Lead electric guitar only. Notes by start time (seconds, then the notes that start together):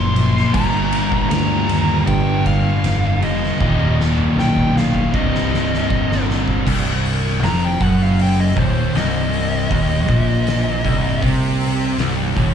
Already playing: C6
0.54 A#5
1.29 A#5
2.07 G5
2.47 F5
3.23 D#5
4.39 G5
4.77 F5
5.15 D#5
7.44 A#5
7.65 G5
7.83 F#5
8.03 F5
8.22 G5
8.40 D#5
8.59 C5
8.97 D#5